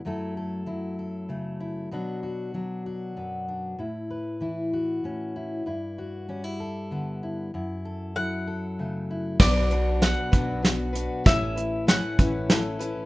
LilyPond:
<<
  \new Staff \with { instrumentName = "Mandolin" } { \time 6/8 \key b \minor \tempo 4. = 64 r2. | r2. | r2. | r2. |
r4 fis''2 | d''4 fis''2 | e''4 fis''2 | }
  \new Staff \with { instrumentName = "Steel-string acoustic guitar" } { \time 6/8 \key b \minor r2. | r2. | r2. | r2. |
r2. | <b, fis b d' fis' b'>8 <b d' fis' b'>8 <b d' fis' b'>8 <b, fis b d' fis' b'>8 <b d' fis' b'>8 <b d' fis' b'>8 | <a cis' e' b'>8 <cis' e' b'>8 <a cis' e' b'>8 <a cis' e' b'>8 <a cis' e' b'>8 <cis' e' b'>8 | }
  \new Staff \with { instrumentName = "Steel-string acoustic guitar" } { \time 6/8 \key b \minor << { <fis a e' a'>8 a'8 e'8 a'8 a8 e'8 | <fis b d' fis'>8 fis'8 d'8 fis'8 b8 d'8 | e'8 b'8 e'8 fis'8 cis'8 e'8 | e'8 fis'8 cis'16 e'16 a'8 b8 e'8 |
e'8 a'8 e'8 a'8 a8 e'8 | <fis b d' fis'>8 d'8 b4 fis'4 | r8 e'8 cis'4 a'4 | } \\ { fis,4 fis4 cis4 | b,4 fis4 fis,4 | a,4 e4 a,4 | g,4 g4 d4 |
fis,4 fis4 cis4 | b,4. fis4. | a,4. e4. | } >> }
  \new Staff \with { instrumentName = "Upright bass" } { \clef bass \time 6/8 \key b \minor r2. | r2. | r2. | r2. |
r2. | b,,4. b,,4. | a,,4. a,,4. | }
  \new DrumStaff \with { instrumentName = "Drums" } \drummode { \time 6/8 r4. r4. | r4. r4. | r4. r4. | r4. r4. |
r4. r4. | <cymc bd sn>8 hh8 <hh sn>8 <hh bd>8 <hh sn>8 hh8 | <hh bd sn>8 hh8 <hh sn>8 <hh bd>8 <hh sn>8 hh8 | }
>>